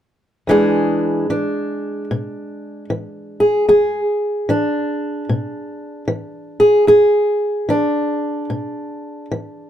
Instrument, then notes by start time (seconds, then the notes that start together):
steel-string acoustic guitar
0.47 E2 E3 G#3 D4 G#4
1.30 E3 D4
2.11 B2
2.90 E3
3.40 G#4
3.68 E2 G#4
4.49 E3 D4
5.29 B2
6.08 E3
6.60 G#4
6.87 E2 G#4
7.69 E3 D4
8.50 B2
9.31 E3